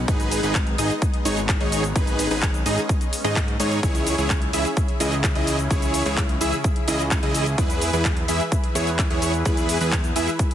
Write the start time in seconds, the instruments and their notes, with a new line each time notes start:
Already playing: analog synth pad B3 D#4
0.08 analog synth bass G#1, analog synth pad G#3, supersaw synth D#4 G#4 B4, kick, closed hi-hat, shaker
0.20 closed hi-hat, shaker
0.31 open hi-hat, shaker
0.43 analog synth bass G#1, supersaw synth D#4 G#4 B4, closed hi-hat, shaker
0.55 kick, clap, closed hi-hat, shaker
0.67 closed hi-hat
0.78 analog synth bass G#1, supersaw synth D#4 G#4 D#5, open hi-hat, shaker
0.90 closed hi-hat, shaker
1.02 kick, closed hi-hat, shaker
1.14 closed hi-hat
1.25 analog synth bass G#1, supersaw synth D#4 G#4 C#5, open hi-hat, shaker
1.37 closed hi-hat, shaker
1.49 kick, clap, closed hi-hat, shaker
1.60 analog synth bass G#1, supersaw synth D#4 G#4 C#5, closed hi-hat
1.72 open hi-hat, shaker
1.84 closed hi-hat, shaker
1.96 analog synth bass G#1, analog synth pad C#4, supersaw synth D#4 G#4 B4, kick, closed hi-hat, shaker
2.07 closed hi-hat, shaker
2.19 open hi-hat, shaker
2.31 analog synth bass G#1, supersaw synth D#4 G#4 B4, open hi-hat, shaker
2.42 kick, clap, closed hi-hat, shaker
2.54 closed hi-hat, shaker
2.66 analog synth bass G#1, supersaw synth D#4 G#4 D#5, open hi-hat, shaker
2.78 closed hi-hat, shaker
2.89 kick, closed hi-hat, shaker
3.01 closed hi-hat, shaker
3.13 open hi-hat, shaker
3.24 analog synth bass G#2, supersaw synth D#4 G#4 D#5, closed hi-hat, shaker
3.36 kick, clap, closed hi-hat, shaker
3.48 closed hi-hat
3.60 analog synth bass G#2, supersaw synth D#4 G#4 C#5, open hi-hat, shaker
3.71 closed hi-hat, shaker
3.83 analog synth bass C#2, analog synth pad C#3 C#4 E4 G#4, supersaw synth E4 C#5, kick, closed hi-hat, shaker
3.95 closed hi-hat, shaker
4.07 open hi-hat, shaker
4.18 analog synth bass C#2, supersaw synth E4 G#4 C#5, closed hi-hat, shaker
4.30 kick, clap, closed hi-hat, shaker
4.42 closed hi-hat
4.53 analog synth bass C#2, supersaw synth E4 G#4 E5, open hi-hat, shaker
4.65 closed hi-hat, shaker
4.77 kick, closed hi-hat, shaker
4.88 closed hi-hat
5.00 analog synth bass C#2, supersaw synth E4 G#4 D#5, open hi-hat, shaker
5.12 closed hi-hat, shaker
5.24 kick, clap, closed hi-hat, shaker
5.35 analog synth bass C#2, supersaw synth E4 G#4 D#5, closed hi-hat
5.47 open hi-hat, shaker
5.59 closed hi-hat, shaker
5.71 analog synth bass C#2, supersaw synth E4 G#4 C#5, kick, closed hi-hat, shaker
5.82 closed hi-hat, shaker
5.94 open hi-hat, shaker
6.06 analog synth bass C#2, supersaw synth E4 G#4 C#5, open hi-hat, shaker
6.17 kick, clap, closed hi-hat, shaker
6.29 closed hi-hat
6.41 analog synth bass C#2, supersaw synth E4 G#4 E5, open hi-hat, shaker
6.53 closed hi-hat, shaker
6.64 kick, closed hi-hat, shaker
6.76 closed hi-hat
6.88 analog synth bass C#2, supersaw synth E4 G#4 D#5, open hi-hat, shaker
6.99 closed hi-hat, shaker
7.11 kick, clap, closed hi-hat, shaker
7.23 analog synth bass C#2, supersaw synth E4 G#4 D#5, closed hi-hat
7.34 open hi-hat, shaker
7.46 closed hi-hat, shaker
7.58 analog synth bass E2, analog synth pad E3 B4, supersaw synth E4 G#4 B4, kick, closed hi-hat, shaker
7.70 closed hi-hat, shaker
7.82 open hi-hat, shaker
7.93 analog synth bass E2, supersaw synth E4 G#4 B4, closed hi-hat, shaker
8.05 kick, clap, closed hi-hat, shaker
8.17 closed hi-hat
8.28 analog synth bass E2, supersaw synth E4 G#4 E5, open hi-hat, shaker
8.40 closed hi-hat, shaker
8.52 kick, closed hi-hat, shaker
8.64 closed hi-hat
8.75 analog synth bass E2, supersaw synth E4 G#4 C#5, open hi-hat, shaker
8.87 closed hi-hat, shaker
8.99 kick, clap, closed hi-hat, shaker
9.10 analog synth bass E2, supersaw synth E4 G#4 C#5, closed hi-hat
9.22 open hi-hat, shaker
9.34 closed hi-hat, shaker
9.45 analog synth bass E2, supersaw synth E4 G#4 B4, kick, closed hi-hat, shaker
9.57 closed hi-hat, shaker
9.69 open hi-hat, shaker
9.81 analog synth bass E2, supersaw synth E4 G#4 B4, open hi-hat, shaker
9.92 kick, clap, closed hi-hat, shaker
10.04 closed hi-hat, shaker
10.16 analog synth bass E2, supersaw synth E4 G#4 E5, open hi-hat, shaker
10.28 closed hi-hat, shaker
10.39 kick, closed hi-hat, shaker
10.51 closed hi-hat